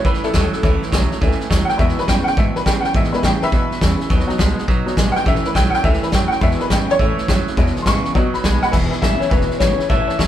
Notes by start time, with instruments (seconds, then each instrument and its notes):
0.05 upright bass C#2, clean electric guitar A2, steel-string acoustic guitar E3 A3 C#4 E4, honky-tonk piano B4, kick, snare
0.14 snare
0.23 steel-string acoustic guitar C#4 E4, honky-tonk piano E4 A4, muted upright bass stroke, snare
0.27 steel-string acoustic guitar A3
0.34 upright bass D#2, steel-string acoustic guitar A2 E3 A3 C#4 E4, clean electric guitar F#3, kick, snare, hi-hat pedal
0.52 steel-string acoustic guitar A3 C#4 E4, snare
0.63 upright bass C#2, steel-string acoustic guitar A2 E3 A3 C#4 E4, honky-tonk piano A3 C#4 E4, kick, snare
0.80 steel-string acoustic guitar A3 C#4 E4, muted upright bass stroke, snare
0.92 upright bass B1, steel-string acoustic guitar A2 E3 A3 C#4 E4, clean electric guitar F#3, kick, snare, hi-hat pedal
1.10 steel-string acoustic guitar A3 C#4 E4, snare
1.21 upright bass C#2, clean electric guitar A2, steel-string acoustic guitar E3 A3 C#4 E4, honky-tonk piano A3 C#4 E4, kick, snare
1.31 snare
1.39 steel-string acoustic guitar A3 C#4 E4, muted upright bass stroke, snare
1.50 upright bass D#2, steel-string acoustic guitar A2 E3 A3 C#4 E4, clean electric guitar F#3, kick, snare, hi-hat pedal
1.65 steel-string acoustic guitar E4, honky-tonk piano F#5
1.69 steel-string acoustic guitar A3 C#4, honky-tonk piano G5, muted upright bass stroke, snare
1.78 steel-string acoustic guitar E2 B2 E3 G#3 B3 E4, upright bass E2, honky-tonk piano G#3 B3 E4 E5, kick, snare
1.89 snare
1.97 steel-string acoustic guitar E3 G#3 B3 E4, honky-tonk piano B4, muted upright bass stroke, snare
2.08 steel-string acoustic guitar E2 B2 E3 G#3 B3 E4, upright bass F#2, clean electric guitar C#3, honky-tonk piano G5, kick, snare, hi-hat pedal
2.27 steel-string acoustic guitar E3 G#3 B3 E4, honky-tonk piano G5, muted upright bass stroke, snare
2.37 clean electric guitar E2 B2, upright bass G#2, steel-string acoustic guitar E3 G#3 B3 E4, honky-tonk piano E5, kick, snare
2.55 steel-string acoustic guitar E3 G#3 E4, honky-tonk piano B4, muted upright bass stroke, snare
2.66 steel-string acoustic guitar E2 B2 E3 G#3 B3 E4, upright bass G2, clean electric guitar C#3, honky-tonk piano G5, kick, snare, hi-hat pedal
2.81 honky-tonk piano F#5, snare
2.85 steel-string acoustic guitar E3 G#3 B3 E4, honky-tonk piano G5, muted upright bass stroke
2.94 steel-string acoustic guitar E2 B2 E3 G#3 B3 E4, upright bass G#2, honky-tonk piano E5, kick, snare
3.04 snare
3.12 steel-string acoustic guitar E3 G#3 B3 E4, honky-tonk piano G#3 B3 E4 B4, muted upright bass stroke, snare
3.23 steel-string acoustic guitar E2 B2 E3 G#3 B3 E4, upright bass A2, clean electric guitar C#3, honky-tonk piano G5, kick, snare, hi-hat pedal
3.42 steel-string acoustic guitar E3 G#3 B3 E4, honky-tonk piano B4 E5, muted upright bass stroke, snare
3.52 clean electric guitar E2 B2, upright bass B2, steel-string acoustic guitar E3 G#3 B3, kick, snare
3.56 steel-string acoustic guitar E4
3.71 steel-string acoustic guitar E3 G#3 B3 E4, muted upright bass stroke, snare
3.81 steel-string acoustic guitar E2 B2 E3 G#3 B3 E4, upright bass E2, clean electric guitar C#3, kick, snare, hi-hat pedal
4.00 steel-string acoustic guitar E3 G#3 B3 E4, muted upright bass stroke, snare
4.10 upright bass D#2, steel-string acoustic guitar B2 F#3 B3 D#4 F#4, kick, snare
4.19 snare
4.27 honky-tonk piano F#3 B3 D#4, steel-string acoustic guitar D#4 F#4, muted upright bass stroke, snare
4.31 steel-string acoustic guitar B3
4.38 upright bass C#2, steel-string acoustic guitar B2 F#3 B3 D#4 F#4, clean electric guitar G#3, kick, snare, hi-hat pedal
4.57 steel-string acoustic guitar B3 D#4 F#4, muted upright bass stroke, snare
4.68 upright bass B1, clean electric guitar B2, steel-string acoustic guitar F#3 B3 D#4 F#4, kick, snare
4.86 honky-tonk piano F#3 B3 D#4, steel-string acoustic guitar B3 D#4 F#4, muted upright bass stroke, snare
4.97 upright bass G#1, steel-string acoustic guitar B2 F#3 B3 D#4 F#4, clean electric guitar G#3, kick, snare, hi-hat pedal
5.12 steel-string acoustic guitar F#4, honky-tonk piano F#5, snare
5.16 steel-string acoustic guitar B3 D#4, honky-tonk piano G5, muted upright bass stroke
5.26 upright bass A1, steel-string acoustic guitar A2 E3 A3 C#4 E4, honky-tonk piano A3 C#4 E4 E5, kick, snare
5.35 snare
5.44 steel-string acoustic guitar A3 C#4 E4, honky-tonk piano B4, muted upright bass stroke, snare
5.55 upright bass B1, steel-string acoustic guitar A2 E3 A3 C#4 E4, clean electric guitar F#3, honky-tonk piano G5, kick, snare, hi-hat pedal
5.70 steel-string acoustic guitar C#4 E4, honky-tonk piano F#5, muted upright bass stroke, snare
5.75 steel-string acoustic guitar A3, honky-tonk piano G5
5.83 upright bass C#2, clean electric guitar A2, steel-string acoustic guitar E3 A3 C#4 E4, honky-tonk piano A3 C#4 E4 E5, kick, snare
5.93 snare
6.01 steel-string acoustic guitar A3 C#4 E4, honky-tonk piano B4, muted upright bass stroke, snare
6.11 upright bass F#2, steel-string acoustic guitar A2 E3 A3 C#4 E4, clean electric guitar F#3, honky-tonk piano G5, kick, snare, hi-hat pedal
6.28 steel-string acoustic guitar C#4 E4, honky-tonk piano F#5, muted upright bass stroke, snare
6.32 steel-string acoustic guitar A3, honky-tonk piano G5
6.40 steel-string acoustic guitar E2 B2 E3 G#3 B3 E4, upright bass E2, honky-tonk piano G#3 B3 E4 E5, kick, snare
6.51 snare
6.59 steel-string acoustic guitar E3 G#3 B3 E4, honky-tonk piano B4, muted upright bass stroke, snare
6.70 steel-string acoustic guitar E2 B2 E3 G#3 B3 E4, upright bass G#2, clean electric guitar C#3, honky-tonk piano G5, kick, snare, hi-hat pedal
6.88 steel-string acoustic guitar E3 G#3 B3 E4, honky-tonk piano C#5, muted upright bass stroke, snare
6.99 clean electric guitar A2, upright bass A2, steel-string acoustic guitar E3 A3 C#4 E4, honky-tonk piano A3 C#4 E4, kick, snare
7.18 steel-string acoustic guitar A3 C#4 E4, muted upright bass stroke, snare
7.28 upright bass F#2, steel-string acoustic guitar A2 E3 A3 C#4 E4, clean electric guitar F#3, kick, snare, hi-hat pedal
7.47 steel-string acoustic guitar A3 C#4 E4, muted upright bass stroke, snare
7.57 upright bass E2, steel-string acoustic guitar E2 B2 E3 G#3 B3 E4, honky-tonk piano G#3 B3 E4, kick, snare
7.66 snare
7.76 steel-string acoustic guitar E3 G#3 B3 E4, muted upright bass stroke, snare
7.82 steel-string acoustic guitar E2, upright bass G#2, honky-tonk piano C6, kick, snare, hi-hat pedal
7.87 steel-string acoustic guitar B2 E3 G#3 B3 E4, clean electric guitar C#3, honky-tonk piano C#6
8.04 steel-string acoustic guitar E3 G#3 B3 E4, muted upright bass stroke, snare
8.14 clean electric guitar B2, upright bass B2, honky-tonk piano F#3 B3 D#4, steel-string acoustic guitar F#3 B3 D#4 F#4, kick, snare
8.33 steel-string acoustic guitar B3 D#4 F#4, honky-tonk piano B5, muted upright bass stroke, snare
8.43 upright bass B1, steel-string acoustic guitar B2 F#3 B3 D#4 F#4, clean electric guitar G#3, kick, snare, hi-hat pedal
8.61 steel-string acoustic guitar B3 D#4 F#4, honky-tonk piano F#5 B5, muted upright bass stroke, snare
8.71 upright bass E1, steel-string acoustic guitar E2 B2 E3 G#3 B3 E4, honky-tonk piano B4 E5 G#5, kick, snare, crash
8.90 steel-string acoustic guitar E3 G#3 B3 E4, honky-tonk piano B4 E5 G#5, muted upright bass stroke, snare
9.01 upright bass G#1, steel-string acoustic guitar E2 B2 E3 G#3 B3 E4, clean electric guitar C#3 E5, honky-tonk piano B4 E5 G#5, kick, snare, hi-hat pedal
9.19 steel-string acoustic guitar G#3 B3 E4, honky-tonk piano B4 E5 G#5, clean electric guitar C#5, muted upright bass stroke, snare
9.23 steel-string acoustic guitar E3
9.29 upright bass E1, clean electric guitar E2 B2 B4, steel-string acoustic guitar E3 G#3 B3 E4, honky-tonk piano B4 E5 G#5, kick, snare
9.41 snare
9.48 steel-string acoustic guitar G#3 B3 E4, honky-tonk piano B4 E5 G#5, muted upright bass stroke, snare
9.52 steel-string acoustic guitar E3
9.59 upright bass G#1, steel-string acoustic guitar E2 B2 E3 G#3 B3, clean electric guitar C#3 C#5, honky-tonk piano B4 E5 G#5, kick, snare, hi-hat pedal
9.63 steel-string acoustic guitar E4
9.78 steel-string acoustic guitar E3 G#3 B3 E4, honky-tonk piano B4 E5 G#5, muted upright bass stroke, snare
9.89 upright bass A1, steel-string acoustic guitar A2 E3 A3 C#4 E4, honky-tonk piano C#5 E5 A5, clean electric guitar E5, kick, snare
10.07 steel-string acoustic guitar A3 C#4 E4, honky-tonk piano C#5 E5 A5, muted upright bass stroke, snare
10.19 upright bass B1, steel-string acoustic guitar A2 E3 A3 C#4 E4, clean electric guitar F#3, honky-tonk piano C#5 E5 A5, kick, snare, hi-hat pedal